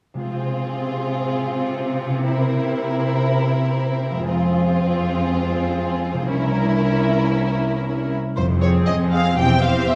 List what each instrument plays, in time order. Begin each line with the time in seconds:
0.14 harp C3 G#3 F4
0.20 violin section G#4, harp C5
0.24 cello section C3, viola section C4, violin section F4
2.09 harp C3
2.13 harp A#3
2.17 harp E4
2.22 violin section A#4, harp C5
2.27 violin section E4
4.10 harp F3
4.15 harp G#3
4.20 harp F4
4.24 harp C5
4.28 cello section F2, viola section C4, violin section F4 G#4
6.13 harp C3
6.18 harp A#3
6.22 harp E4
6.26 viola section C#4, violin section E4, harp C#5
6.31 cello section C2, violin section A#4
8.35 double bass section F1, cello section F2, harp F2, violin section C5
8.54 harp C4
8.61 viola section C4 G#4, violin section C#5
8.70 harp C5
8.87 cello section F2, harp G#4, violin section D#5
9.04 harp G#5
9.12 viola section C4 G#4, violin section F5
9.20 harp C5
9.37 double bass section E1, harp E2, cello section E2, viola section C4 G4, violin section C5 G5
9.54 harp C4
9.63 viola section C4 G4, violin section F5
9.71 harp C5
9.88 cello section E2, harp G4, violin section E5